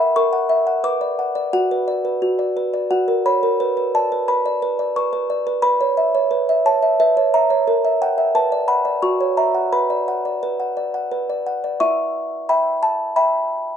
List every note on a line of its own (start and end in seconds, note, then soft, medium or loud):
0.00 0.15 A#4 medium
0.00 0.26 E5 soft
0.00 0.14 B5 medium
0.16 0.82 A#4 medium
0.16 0.81 C#6 medium
0.33 0.60 F#5 soft
0.49 0.77 E5 soft
0.67 0.84 F#5 soft
0.84 1.51 B4 medium
0.84 1.50 D6 medium
1.01 1.29 D5 soft
1.19 1.46 F#5 soft
1.35 1.53 D5 soft
1.53 2.21 F#4 medium
1.53 2.87 F#5 medium
1.71 1.98 B4 soft
1.88 2.15 D5 soft
2.05 2.32 B4 soft
2.22 2.89 F#4 soft
2.39 2.66 D5 soft
2.57 2.84 B4 soft
2.74 2.91 D5 soft
2.91 3.58 F#4 soft
2.91 3.24 F#5 medium
3.08 3.36 A#4 soft
3.26 3.53 C#5 soft
3.26 3.92 B5 medium
3.43 3.60 A#4 soft
3.60 3.76 B4 soft
3.77 4.04 B4 soft
3.95 4.22 D5 soft
3.95 4.27 A5 medium
4.12 4.27 B4 soft
4.28 4.61 B4 soft
4.28 4.93 B5 medium
4.46 4.73 D5 soft
4.62 4.89 B4 soft
4.79 5.06 D5 soft
4.96 5.12 B4 soft
4.96 5.61 C#6 medium
5.13 5.40 B4 soft
5.30 5.57 D5 soft
5.47 5.62 B4 soft
5.62 6.30 B4 medium
5.62 6.61 B5 medium
5.81 6.08 C#5 soft
5.97 6.25 E5 soft
6.15 6.42 C#5 soft
6.31 6.99 B4 soft
6.49 6.76 E5 soft
6.66 6.93 C#5 soft
6.66 6.99 A5 medium
6.83 6.99 E5 soft
7.00 7.66 B4 medium
7.00 7.33 E5 medium
7.17 7.44 C#5 soft
7.34 7.61 E5 medium
7.34 7.99 A#5 medium
7.50 7.68 C#5 soft
7.68 8.33 A#4 medium
7.85 8.12 E5 soft
8.02 8.29 F#5 soft
8.02 8.34 G5 medium
8.18 8.35 E5 soft
8.35 9.01 B4 medium
8.35 8.68 A5 medium
8.52 8.80 D5 soft
8.68 8.96 F#5 soft
8.68 9.02 B5 medium
8.85 9.03 D5 soft
9.02 9.70 F#4 soft
9.02 9.36 C#6 medium
9.21 9.48 C#5 soft
9.37 9.65 E5 soft
9.37 9.71 A#5 medium
9.55 9.72 F#5 soft
9.73 10.42 B4 soft
9.73 11.07 B5 medium
9.90 10.18 D5 soft
10.08 10.35 F#5 soft
10.25 10.52 D5 soft
10.43 11.10 B4 soft
10.60 10.87 F#5 soft
10.77 11.04 D5 soft
10.94 11.21 F#5 soft
11.11 11.78 B4 soft
11.30 11.56 D5 soft
11.47 11.73 F#5 soft
11.64 11.80 D5 soft
11.80 12.46 E4 medium
11.80 12.46 E5 soft
11.80 12.46 C#6 medium
12.49 13.13 E5 soft
12.49 13.13 G5 soft
12.49 12.81 B5 medium
12.83 13.15 A5 medium
13.16 13.77 E5 soft
13.16 13.77 G5 soft
13.16 13.77 B5 medium